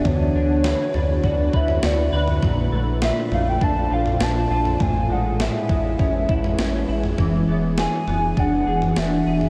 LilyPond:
<<
  \new Staff \with { instrumentName = "Soft synth lead" } { \time 4/4 \key d \lydian \tempo 4 = 101 cis''2 d''8 e''8 d''8. r16 | r4 e''8 f''16 g''16 a''8 f''8 a''4 | gis''8 fis''8 e''2~ e''8 r8 | r4 gis''4 fis''4 e''4 | }
  \new Staff \with { instrumentName = "Ambient pad" } { \time 4/4 \key d \lydian <d d' e' fis' b'>1 | <bes, f' a' c'' d''>1 | <gis e' gis' b' cis''>1 | <e b d' fis'>1 | }
  \new Staff \with { instrumentName = "Clean electric guitar" } { \time 4/4 \key d \lydian d8 d'8 b'8 d'8 fis'8 b'8 fis'8 b'8 | bes,8 a8 f'8 a8 d'8 f'8 d'8 f'8 | a,8 gis8 e'8 gis8 cis'8 e'8 cis'8 e'8 | e8 b8 gis'8 b8 d'8 gis'8 d'8 gis'8 | }
  \new Staff \with { instrumentName = "Analog synth bass" } { \clef bass \time 4/4 \key d \lydian d,8 d,8. r16 d,8 d,8 d,8 d,8 d,8 | bes,,8 bes,,8. r16 bes,,8 bes,,8 bes,,8 bes,,8 bes,,8 | a,,8 a,,8. r16 a,,8 a,,8 a,,8 a,,8 a,,8 | e,,8 e,,8. r16 e,,8 e,,8 e,,8 e,,8 e,,8 | }
  \new DrumStaff \with { instrumentName = "Drums" } \drummode { \time 4/4 <bd tomfh>4 sn8 tomfh8 <bd tomfh>8 bd16 tomfh16 sn8. tomfh16 | <bd tomfh>4 sn8 tomfh8 <bd tomfh>8. tomfh16 sn8. tomfh16 | <bd tomfh>4 sn8 <bd tomfh>8 <bd tomfh>8 bd16 tomfh16 sn8. tomfh16 | <bd tomfh>4 sn8 tomfh8 <bd tomfh>8. tomfh16 sn8. tomfh16 | }
>>